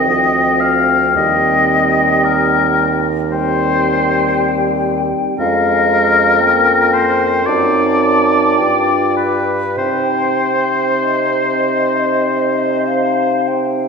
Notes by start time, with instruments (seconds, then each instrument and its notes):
Already playing: clarinet C4, oboe D#5, flute G5
0.06 bassoon D2, french horn F3
0.60 oboe F5
1.16 bassoon D#2, french horn G3, clarinet C4, oboe D#5, flute G5
2.25 oboe A#4
3.31 french horn G3, clarinet C4, oboe C5, flute G5
5.39 bassoon F2, french horn G#3, clarinet C#4, oboe A#4, flute F5
6.40 french horn A#3, flute G5
6.93 oboe C5
7.47 bassoon F#2, french horn C4, clarinet D#4, oboe D5, flute A5
8.57 bassoon G2, french horn D4, clarinet F4, flute G5
9.17 oboe B4
9.77 bassoon C3, french horn C4, clarinet D#4, oboe C5, flute G5
11.03 flute D#5
12.88 flute F5
13.48 flute G5